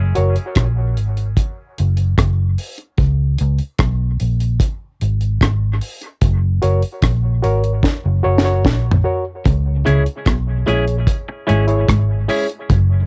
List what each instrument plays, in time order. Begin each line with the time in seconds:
Already playing: fingered electric bass F#1
0.15 fingered electric bass F#1, reed electric piano F#4 A#4 C#5, closed hi-hat
0.36 closed hi-hat
0.55 fingered electric bass A#1, kick, cross-stick, closed hi-hat
0.97 fingered electric bass G#1, closed hi-hat
1.17 closed hi-hat
1.37 kick, closed hi-hat
1.78 fingered electric bass F#1, closed hi-hat
1.97 closed hi-hat
2.18 fingered electric bass F#1, kick, cross-stick, closed hi-hat
2.58 open hi-hat
2.78 closed hi-hat
2.98 fingered electric bass C#2, kick, closed hi-hat
3.38 fingered electric bass C#2, closed hi-hat
3.59 closed hi-hat
3.79 fingered electric bass B1, kick, cross-stick, closed hi-hat
4.20 fingered electric bass A#1, closed hi-hat
4.41 closed hi-hat
4.60 kick, closed hi-hat
5.01 fingered electric bass G#1, closed hi-hat
5.21 closed hi-hat
5.41 fingered electric bass G#1, kick, cross-stick, closed hi-hat
5.81 open hi-hat
6.02 closed hi-hat
6.21 fingered electric bass F#1, kick, closed hi-hat
6.62 fingered electric bass F#1, reed electric piano F#4 A#4 C#5, closed hi-hat
6.82 closed hi-hat
7.02 fingered electric bass A#1, kick, cross-stick, closed hi-hat
7.42 fingered electric bass G#1, reed electric piano F#4 A#4 C#5, closed hi-hat
7.64 reed electric piano A#4 C#5, closed hi-hat
7.83 kick, snare
8.06 fingered electric bass F#1
8.23 fingered electric bass F#1, reed electric piano F#4 A#4 C#5
8.38 snare
8.44 reed electric piano F#4 A#4 C#5
8.65 fingered electric bass A#1, kick, snare
8.91 floor tom
9.04 reed electric piano F#4 A#4 C#5
9.45 fingered electric bass C#2, clean electric guitar C#3, kick, closed hi-hat
9.85 fingered electric bass C#2, clean electric guitar C#3 G#3 C#4 E4 G#4, reed electric piano E4 G#4 C#5, closed hi-hat
10.06 closed hi-hat
10.26 fingered electric bass B1, clean electric guitar B2, kick, cross-stick, closed hi-hat
10.66 fingered electric bass A#1, clean electric guitar A#2 G#3 C#4 E4 G#4, reed electric piano E4 G#4 C#5, closed hi-hat
10.88 closed hi-hat
11.07 kick, closed hi-hat
11.29 muted clean electric guitar stroke
11.47 fingered electric bass G#1, clean electric guitar G#2 G#3 C#4 E4 G#4, reed electric piano E4 G#4 C#5, closed hi-hat
11.67 reed electric piano E4 G#4 C#5, closed hi-hat
11.88 fingered electric bass G#1, clean electric guitar G#2, kick, cross-stick, closed hi-hat
12.28 clean electric guitar G#3 C#4 E4 G#4, reed electric piano E4 G#4 C#5, open hi-hat
12.49 closed hi-hat
12.70 fingered electric bass F#1, clean electric guitar F#2, kick, closed hi-hat